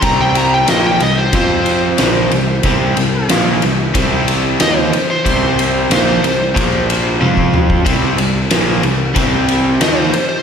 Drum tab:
RD |x-x-x-x-x-x-x-x-|x-x-x-x-x-x-x-x-|x-x-x-x-x-x-----|x-x-x-x-x-x-x-x-|
SD |----o-------o---|----o-------o---|----o-----------|----o-------o---|
T1 |----------------|----------------|------------o---|----------------|
T2 |----------------|----------------|--------------o-|----------------|
BD |o-------o-------|o-------o-------|o-------o----o-o|o-------o-------|